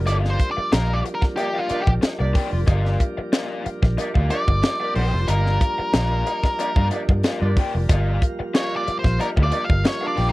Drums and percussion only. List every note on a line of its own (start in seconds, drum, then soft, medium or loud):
0.07 closed hi-hat medium
0.07 cowbell medium
0.25 snare soft
0.40 kick medium
0.40 closed hi-hat medium
0.72 snare loud
0.72 closed hi-hat loud
0.72 cowbell medium
1.06 closed hi-hat medium
1.22 kick medium
1.22 snare soft
1.37 closed hi-hat medium
1.37 cowbell medium
1.69 closed hi-hat medium
1.69 cowbell medium
1.87 kick medium
2.02 snare loud
2.02 closed hi-hat medium
2.02 cowbell medium
2.35 kick loud
2.35 open hi-hat medium
2.67 kick loud
2.67 closed hi-hat medium
2.67 cowbell medium
2.85 snare soft
3.00 kick medium
3.00 closed hi-hat medium
3.33 snare loud
3.33 closed hi-hat loud
3.33 cowbell medium
3.66 closed hi-hat medium
3.83 kick medium
3.83 snare soft
3.98 closed hi-hat loud
3.98 cowbell medium
4.15 kick medium
4.30 closed hi-hat medium
4.30 cowbell medium
4.48 kick medium
4.63 snare loud
4.63 closed hi-hat medium
4.63 cowbell medium
4.95 open hi-hat medium
5.28 closed hi-hat loud
5.28 cowbell medium
5.46 snare soft
5.61 kick medium
5.61 closed hi-hat medium
5.94 snare loud
5.94 closed hi-hat medium
5.94 cowbell medium
6.27 closed hi-hat medium
6.27 cowbell medium
6.43 kick medium
6.43 snare soft
6.59 closed hi-hat loud
6.59 cowbell medium
6.76 kick loud
6.91 closed hi-hat medium
6.91 cowbell medium
7.09 kick loud
7.23 snare loud
7.23 closed hi-hat medium
7.23 cowbell medium
7.57 kick loud
7.57 open hi-hat medium
7.89 kick loud
7.89 closed hi-hat loud
7.89 cowbell medium
8.22 kick medium
8.22 closed hi-hat medium
8.55 snare loud
8.55 closed hi-hat medium
8.55 cowbell medium
8.88 closed hi-hat medium
9.04 kick medium
9.04 snare soft
9.20 closed hi-hat loud
9.20 cowbell medium
9.37 kick medium
9.52 closed hi-hat medium
9.52 cowbell medium
9.70 kick loud
9.85 snare loud
9.85 closed hi-hat medium
9.85 cowbell medium
10.17 open hi-hat medium